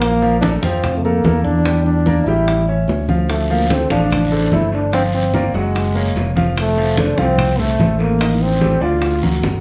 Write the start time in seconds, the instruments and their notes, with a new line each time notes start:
Already playing: fingered electric bass A#1, upright piano F3 F4 F5
0.00 trombone A#3, high bongo, high conga
0.22 upright piano F3 F4 F5, high bongo, high conga
0.41 upright piano A3 A4 A#4, trombone D4, high bongo, high conga
0.62 fingered electric bass F2, upright piano F3 F4 F5, trombone C4, high bongo, high conga
0.84 high bongo, high conga, low conga
0.97 trombone A3
1.03 upright piano A3 A4 A#4, trombone A#3, high conga
1.24 fingered electric bass E2, upright piano A#3 A4 A#4, high bongo, low bongo, high conga
1.44 trombone D4, high bongo, high conga
1.66 upright piano G3 G4 G5, high bongo, high conga
1.84 trombone D4, high bongo, high conga
2.06 upright piano A#3 A#4 D5, high bongo, high conga
2.26 fingered electric bass A1, upright piano G3 G4 G5, trombone E4, high bongo, high conga
2.48 high bongo, high conga
2.68 upright piano C#4 C#5 E5, high conga
2.88 fingered electric bass D2, high bongo, low bongo, high conga
3.09 upright piano F3 F4 F5, high bongo, high conga
3.29 trombone A3, high bongo, high conga, long guiro
3.50 upright piano F3 F4 F5, trombone A#3, high bongo, high conga
3.70 upright piano A3 A4 C5, trombone C4, high bongo, high conga, short guiro
3.90 fingered electric bass A1, upright piano F3 F4 F5, trombone D4, high bongo, high conga, short guiro
4.11 high bongo, high conga, low conga, long guiro
4.32 upright piano A3 A4 C5, high conga
4.52 fingered electric bass G1, upright piano A3 A4 C5, trombone E4, high bongo, low bongo, high conga, short guiro
4.72 trombone D4, high bongo, short guiro
4.92 upright piano F3 F4 F5, trombone C4, high bongo, high conga, long guiro
5.14 trombone C4, high bongo, high conga
5.34 upright piano A#3 A#4 D5, high bongo, high conga, short guiro
5.54 fingered electric bass F#1, upright piano F#3 F#4 F#5, trombone G#3, high bongo, high conga, short guiro
5.75 high bongo, high conga, long guiro
5.95 upright piano A#3 A#4 C#5, high conga
6.15 fingered electric bass F1, high bongo, low bongo, high conga, short guiro
6.36 upright piano F3 F4 F5, high bongo, high conga, short guiro
6.56 trombone A3, high bongo, high conga, long guiro
6.77 upright piano F3 F4 F5, high bongo, high conga
6.97 upright piano A3 A4 C5, trombone D4, high bongo, high conga, short guiro
7.18 fingered electric bass C2, upright piano F3 F4 F5, trombone C4, high bongo, high conga, short guiro
7.38 high bongo, high conga, low conga, long guiro
7.59 upright piano A3 A4 C5, trombone A3, high conga, low conga
7.79 fingered electric bass A1, upright piano A3 A4 C5, high bongo, low bongo, high conga, short guiro
7.99 trombone A#3, high bongo, short guiro
8.19 upright piano D#3 D#4 D#5, high bongo, high conga, long guiro
8.40 trombone C4, high bongo, high conga
8.60 upright piano G3 G4 A4, high bongo, high conga, short guiro
8.80 fingered electric bass D2, upright piano D3 D4 D5, trombone F4, high bongo, high conga, short guiro
9.01 high bongo, high conga, long guiro
9.22 upright piano F#3 F#4 A#4, high conga
9.42 fingered electric bass G1, high bongo, low bongo, high conga, short guiro